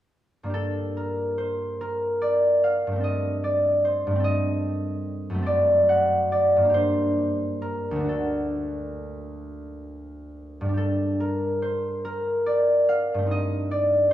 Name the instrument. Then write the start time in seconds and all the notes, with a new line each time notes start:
harp
0.43 G2 A#3 D4
0.50 G4 A4
0.97 A#4
1.38 C5
1.81 A#4
2.22 D5
2.64 F5
2.87 G2
2.92 A3 C4
3.00 A4 D#5
3.44 D5
3.85 C5
4.07 G2
4.11 A3
4.15 C4
4.20 A4
4.24 D#5
5.30 F#2
5.34 A3 C4
5.42 A4 D5
5.89 F#5
6.32 D5
6.56 G2
6.61 A#3 D4
6.70 G4
6.74 C5
7.62 A#4
7.91 D2
7.96 A3
8.00 D4
8.04 F#4
8.09 A4
10.61 G2
10.65 G3 D4
10.74 G4 A4
11.20 A#4
11.62 C5
12.05 A#4
12.46 D5
12.89 F5
13.14 G2
13.18 A3 C4
13.26 D#4
13.31 D#5
13.71 D5